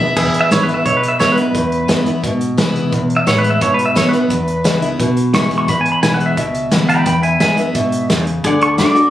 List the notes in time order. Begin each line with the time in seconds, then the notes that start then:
Already playing: B2 G#4 B4 E5
0.00 B3 E4
0.17 E1 E2 G#4 B4 E5, kick, crash
0.34 muted fingered electric bass stroke, closed hi-hat
0.41 E5
0.51 G#1 E3 G#3 B3 E4 C#5, snare, closed hi-hat
0.63 B4
0.68 B3 E4, closed hi-hat
0.74 E5
0.85 B1 B2 C#5, kick, closed hi-hat
0.97 B4
1.03 closed hi-hat
1.08 E5
1.19 F#2 E3 G#3 B3 E4 C#5, snare, closed hi-hat
1.32 B4
1.37 B3 E4, closed hi-hat
1.42 B4
1.55 E2, kick, closed hi-hat
1.72 closed hi-hat
1.88 F#2 E3 G#3 B3 E4, snare, closed hi-hat
2.06 B3 E4, muted fingered electric bass stroke, closed hi-hat
2.24 G#2 B2, kick, closed hi-hat
2.41 closed hi-hat
2.57 C3 E3 G#3 B3 E4, snare, closed hi-hat
2.76 closed hi-hat
2.92 E2 B2, kick, closed hi-hat
3.10 closed hi-hat
3.17 E5
3.27 A2 E3 G#3 B3 E4 C#5, snare, closed hi-hat
3.38 B4
3.44 closed hi-hat
3.50 E5
3.61 G#2 B2 C#5, kick, closed hi-hat
3.74 B4
3.79 closed hi-hat
3.86 E5
3.95 F#2 E3 G#3 B3 E4 C#5, snare, closed hi-hat
4.09 B4
4.13 B3 E4, closed hi-hat
4.20 B4
4.30 E2, kick, closed hi-hat
4.48 closed hi-hat
4.64 C#2 E3 G#3 B3 E4, snare, closed hi-hat
4.82 B3 E4, closed hi-hat
4.99 B1 B2, kick, closed hi-hat
5.17 closed hi-hat
5.34 F#1 E3 G#3 B3 E4 C#6, snare, closed hi-hat
5.51 kick, closed hi-hat
5.58 C#6
5.68 G#1 E2 B5, kick, closed hi-hat
5.81 G#5
5.85 muted fingered electric bass stroke, closed hi-hat
5.92 B5
6.03 B1 E3 G#3 B3 E4 G#5, snare, closed hi-hat
6.14 F#5
6.20 closed hi-hat
6.26 E5
6.37 C#2 B2 E5, kick, closed hi-hat
6.54 closed hi-hat
6.72 D2 E3 G#3 B3 E4, snare, closed hi-hat
6.89 G5 B5, closed hi-hat
7.06 E2 G5 B5, kick, closed hi-hat
7.23 E5 G#5, closed hi-hat
7.40 F#2 E3 G#3 B3 E4 E5 G#5, snare, closed hi-hat
7.57 B3 E4 E5, closed hi-hat
7.75 G#2 B2, kick, closed hi-hat
7.92 closed hi-hat
8.10 E2 C#3, snare, closed hi-hat
8.27 closed hi-hat
8.44 D2 D3 G#4 D5 F#5, kick, closed hi-hat
8.61 A4 C#6, closed hi-hat
8.78 F#2 D3 A3 D4 F#4 D6, snare, closed hi-hat
8.95 D4 F#4, closed hi-hat